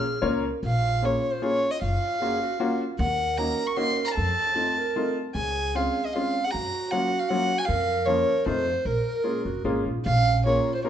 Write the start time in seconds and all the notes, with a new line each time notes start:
Already playing: G#4 F6
0.22 C#2 A#3 C#4 F4 A#4 C#5
0.62 A#1 F4 F5
1.02 A#3 C#4 F4 G#4 C#5
1.33 C5
1.42 A#3 C#4 F4 G#4 C#5
1.71 D#5
1.80 F#1 F4 F5
2.20 A#3 C#4 F4 F#4 G#4
2.42 F#4
2.58 A#3 C#4 F4 F#4
2.99 D#2 A#4 F#5
3.37 A#3 C#4 D#4 F#4 A#5
3.66 C#6
3.76 A#3 C#4 D#4 F#4 C6
4.04 A#5 C6
4.14 F2 A4 A5
4.55 A3 C4 D#4 F4
4.78 A#4
4.96 A3 C4 D#4 F4
5.35 C#2 G#4 G#5
5.75 G#3 C4 C#4 F4 F5
6.05 D#5
6.13 G#3 C4 C#4 F4 F5
6.44 G#4 F#5
6.51 F#2 F#4 A#5
6.91 F#3 A#3 C#4 F4 F#5
7.19 F5
7.29 F#3 A#3 C#4 F4 F#5
7.58 G#5
7.65 F2 A#4 F5
8.06 F3 A#3 C#4 F4 C#5
8.45 F2 A3 C4 D#4 F4 C5
8.85 A#1 A#4
9.24 G#3 A#3 C#4 F4 G#4
9.45 F1 F#4
9.64 G#1 G#3 A#3 C#4 F4 G#4
9.86 A#1 F4
10.01 D#4
10.05 A#1 C#4 F5
10.46 A#3 C#4 F4 G#4 A#4 C#5
10.75 C5
10.84 A#3 C#4 F4 G#4 A#4 C#5